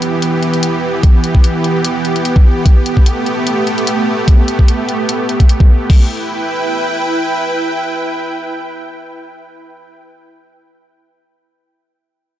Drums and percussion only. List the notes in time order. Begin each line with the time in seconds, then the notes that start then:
0.02 closed hi-hat
0.22 closed hi-hat
0.43 closed hi-hat
0.53 closed hi-hat
0.63 closed hi-hat
1.03 kick, closed hi-hat
1.24 closed hi-hat
1.35 kick
1.44 closed hi-hat
1.64 closed hi-hat
1.85 closed hi-hat
2.05 closed hi-hat
2.16 closed hi-hat
2.25 closed hi-hat
2.36 kick
2.66 kick, closed hi-hat
2.86 closed hi-hat
2.97 kick
3.06 closed hi-hat
3.26 closed hi-hat
3.47 closed hi-hat
3.67 closed hi-hat
3.78 closed hi-hat
3.87 closed hi-hat
4.28 kick, closed hi-hat
4.48 closed hi-hat
4.59 kick
4.68 closed hi-hat
4.89 closed hi-hat
5.09 closed hi-hat
5.29 closed hi-hat
5.40 kick, closed hi-hat
5.49 closed hi-hat
5.60 kick
5.90 kick, crash